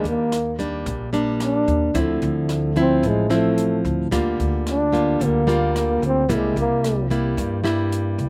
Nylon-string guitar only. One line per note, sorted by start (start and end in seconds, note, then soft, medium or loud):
0.00 0.83 D#3 medium
0.00 0.32 G3 medium
0.00 0.32 A#3 medium
0.00 0.32 D4 medium
0.59 1.09 G3 medium
0.59 1.09 A#3 medium
0.59 1.09 D4 medium
0.86 1.92 A#2 medium
1.13 1.90 G3 medium
1.13 1.90 A#3 medium
1.13 1.90 D4 medium
1.94 3.00 D3 medium
1.94 2.72 F3 soft
1.94 2.72 C4 medium
1.94 2.72 E4 medium
2.76 3.26 F3 medium
2.76 3.26 C4 medium
2.76 3.26 E4 medium
3.03 4.09 A2 medium
3.30 4.07 F3 medium
3.30 4.07 C4 medium
3.30 4.07 E4 medium
4.11 5.17 D3 medium
4.11 4.88 G3 medium
4.11 4.89 A#3 medium
4.11 4.89 F4 medium
4.92 5.43 G3 medium
4.92 5.43 A#3 medium
4.92 5.43 F4 medium
5.20 6.26 D3 medium
5.47 6.24 G3 medium
5.47 6.24 A#3 medium
5.47 6.25 F4 medium
6.29 7.34 C3 medium
6.29 7.06 G3 medium
6.29 7.06 A#3 medium
6.29 7.06 E4 medium
7.10 7.60 G3 medium
7.10 7.60 A#3 medium
7.10 7.60 E4 medium
7.37 8.29 G2 medium
7.64 8.29 G3 medium
7.64 8.29 A#3 medium
7.64 8.29 E4 medium